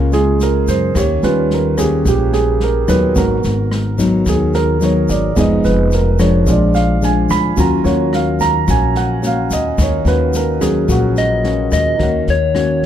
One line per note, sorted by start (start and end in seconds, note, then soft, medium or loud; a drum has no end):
0.00 0.64 C#2 medium
0.00 0.92 C#3 medium
0.00 0.12 G#3 soft
0.00 0.12 A#3 soft
0.00 0.91 A#3 soft
0.00 0.91 C#4 medium
0.00 0.13 F4 soft
0.00 0.91 F4 medium
0.12 0.37 G#3 soft
0.12 0.37 A#3 soft
0.12 0.38 F4 soft
0.12 0.40 G#4 medium
0.12 snare soft
0.12 shaker soft
0.40 0.68 A#4 medium
0.40 snare soft
0.40 shaker medium
0.68 0.93 F#2 medium
0.68 0.95 C5 medium
0.68 kick soft
0.68 snare soft
0.68 shaker medium
0.95 1.21 D#2 medium
0.95 2.03 D#3 medium
0.95 1.74 A#3 medium
0.95 1.74 C#4 soft
0.95 1.74 G4 medium
0.95 1.23 C#5 medium
0.95 kick medium
0.95 cross-stick medium
0.95 snare soft
0.95 shaker medium
1.23 2.02 D#2 medium
1.23 1.60 G3 soft
1.23 1.60 C#4 soft
1.23 1.60 F4 soft
1.23 1.50 B4 medium
1.23 snare soft
1.23 shaker soft
1.50 1.79 A#4 medium
1.50 snare soft
1.77 2.84 A#3 medium
1.77 2.84 C#4 medium
1.77 2.84 G4 medium
1.77 2.05 G#4 medium
1.77 kick soft
1.77 cross-stick medium
1.77 snare soft
1.77 shaker medium
2.05 2.84 A#1 loud
2.05 3.13 A#2 medium
2.05 2.34 G4 medium
2.05 kick medium
2.05 snare soft
2.05 shaker medium
2.33 2.60 G#4 medium
2.33 snare soft
2.33 shaker soft
2.60 2.89 A#4 medium
2.60 snare soft
2.88 3.14 D#2 medium
2.88 3.39 F#3 medium
2.88 3.39 B3 medium
2.88 3.39 D#4 medium
2.88 3.16 B4 medium
2.88 kick soft
2.88 cross-stick medium
2.88 snare soft
2.88 shaker medium
3.15 3.42 G#1 medium
3.15 4.24 G#2 soft
3.15 3.52 B3 soft
3.15 3.52 F#4 soft
3.15 3.34 A#4 medium
3.15 kick medium
3.15 snare soft
3.15 shaker medium
3.43 4.23 G#1 medium
3.43 snare soft
3.43 shaker soft
3.71 cross-stick medium
3.71 snare soft
3.98 4.77 F#3 medium
3.98 4.77 B3 medium
3.98 4.77 D#4 medium
3.98 kick soft
3.98 snare soft
3.98 shaker medium
4.26 5.05 D#2 medium
4.26 5.34 D#3 medium
4.26 4.54 G#4 medium
4.26 kick medium
4.26 cross-stick medium
4.26 snare soft
4.26 shaker medium
4.54 4.81 A#4 medium
4.54 snare soft
4.54 shaker soft
4.81 5.32 F#3 medium
4.81 5.32 B3 medium
4.81 5.33 D#4 medium
4.81 5.10 C#5 medium
4.81 snare soft
4.81 shaker medium
5.09 5.35 G#1 medium
5.09 5.36 D5 medium
5.09 kick soft
5.09 snare soft
5.09 shaker medium
5.36 5.63 F1 medium
5.36 6.18 F3 medium
5.36 6.15 G#3 soft
5.36 6.15 B3 soft
5.36 5.91 B3 medium
5.36 5.92 D#4 medium
5.36 6.16 D#4 soft
5.36 5.92 G#4 medium
5.36 5.65 D#5 medium
5.36 kick medium
5.36 cross-stick medium
5.36 snare soft
5.36 shaker medium
5.64 6.43 F1 medium
5.64 5.91 B4 medium
5.64 snare soft
5.64 shaker soft
5.91 6.20 A#4 medium
5.91 snare soft
5.91 shaker medium
6.19 6.98 F3 medium
6.19 6.98 G#3 medium
6.19 6.98 D4 medium
6.19 6.46 C#5 medium
6.19 kick soft
6.19 cross-stick medium
6.19 snare soft
6.19 shaker medium
6.46 7.26 A#1 loud
6.46 7.55 A#2 medium
6.46 6.83 G#3 soft
6.46 6.84 D4 soft
6.46 6.84 F4 soft
6.46 6.75 D5 medium
6.46 kick medium
6.46 snare soft
6.46 shaker medium
6.74 7.02 F5 medium
6.74 snare soft
6.74 shaker soft
7.02 7.53 F3 medium
7.02 7.53 G#3 medium
7.02 7.53 D4 medium
7.02 7.30 G#5 medium
7.02 snare soft
7.02 shaker medium
7.29 7.56 D2 medium
7.29 7.57 B5 medium
7.29 kick soft
7.29 cross-stick medium
7.29 snare soft
7.29 shaker medium
7.56 7.83 D#2 loud
7.56 8.65 D#3 medium
7.56 7.94 F#3 soft
7.56 7.81 A#3 medium
7.56 7.94 C#4 soft
7.56 7.81 C#4 soft
7.56 7.94 F4 soft
7.56 7.81 F#4 medium
7.56 7.86 A#5 medium
7.56 kick medium
7.56 snare soft
7.56 shaker medium
7.84 8.64 D#2 medium
7.84 8.64 A#3 medium
7.84 8.64 C#4 medium
7.84 8.64 F#4 medium
7.84 8.11 C#5 medium
7.84 snare soft
7.84 shaker soft
8.13 8.40 F5 medium
8.13 cross-stick medium
8.13 snare soft
8.40 8.67 A#5 medium
8.40 kick soft
8.40 snare soft
8.40 shaker medium
8.68 9.47 A#1 medium
8.68 9.76 A#2 medium
8.68 9.19 A#3 medium
8.68 9.19 C#4 medium
8.68 9.19 F#4 medium
8.68 8.96 G#5 medium
8.68 kick medium
8.68 cross-stick medium
8.68 snare soft
8.68 shaker medium
8.95 9.23 F#5 medium
8.95 snare soft
8.95 shaker soft
9.22 10.01 A#3 medium
9.22 10.01 C#4 medium
9.22 10.02 F#4 medium
9.22 snare soft
9.22 shaker medium
9.27 9.52 F5 medium
9.51 9.76 D#2 medium
9.51 9.79 D#5 medium
9.51 kick soft
9.51 snare soft
9.51 shaker medium
9.78 10.04 D#2 medium
9.78 10.86 D#3 medium
9.78 10.07 C#5 medium
9.78 kick medium
9.78 cross-stick medium
9.78 snare soft
9.78 shaker medium
10.05 10.84 D#2 medium
10.05 10.84 A#3 medium
10.05 10.84 C#4 medium
10.05 10.85 F#4 medium
10.05 10.34 B4 medium
10.05 snare soft
10.05 shaker soft
10.33 10.62 A#4 medium
10.33 snare soft
10.33 shaker medium
10.60 10.97 F#3 soft
10.60 10.98 C#4 soft
10.60 10.88 G#4 medium
10.60 kick soft
10.60 cross-stick medium
10.60 snare soft
10.60 shaker medium
10.88 11.68 A#1 loud
10.88 11.96 A#2 medium
10.88 11.24 A#3 medium
10.88 11.24 C#4 medium
10.88 11.24 F#4 medium
10.88 11.07 F#4 medium
10.88 kick medium
10.88 snare soft
10.88 shaker medium
11.16 11.69 D#5 loud
11.16 snare soft
11.16 shaker soft
11.44 11.97 A#3 medium
11.44 11.97 C#4 medium
11.44 11.97 F#4 medium
11.44 snare soft
11.72 11.97 D#2 medium
11.72 12.24 D#5 loud
11.72 kick soft
11.72 cross-stick medium
11.72 snare soft
11.72 shaker medium
11.97 12.25 D#2 medium
11.97 12.86 D#3 soft
11.97 12.35 A#3 medium
11.97 12.35 C#4 soft
11.97 12.86 D#4 soft
11.97 12.35 F#4 soft
11.97 12.86 A#4 soft
11.97 kick medium
11.97 snare soft
12.01 12.86 C#5 soft
12.01 12.86 F#5 soft
12.27 12.86 D#2 medium
12.27 12.86 C#5 loud
12.27 snare soft
12.54 12.86 A#3 soft
12.54 12.86 C#4 medium
12.54 12.86 F#4 medium
12.54 cross-stick medium
12.54 snare soft
12.83 kick soft
12.83 snare soft